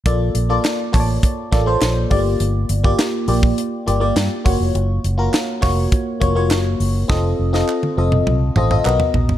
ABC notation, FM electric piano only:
X:1
M:4/4
L:1/16
Q:1/4=102
K:Bb
V:1 name="FM electric piano"
[B,FAd]3 [B,FAd]3 [B,FA_d=d]4 [B,FAd] [B,FAc]3 [A,B,FGd]2- | [A,B,FGd]2 z [B,FGd]3 [B,FGd]4 [B,FGd] [B,FGd]3 [B,F_G_d]2- | [B,F_G_d]2 z [B,FGB]3 [B,FGd]4 [B,FGd] [B,FGd]4 z | [CFAe]3 [CFAe]3 [CFAe]4 [CFAe] [CFAe] [=B,^F^A^d]4 |]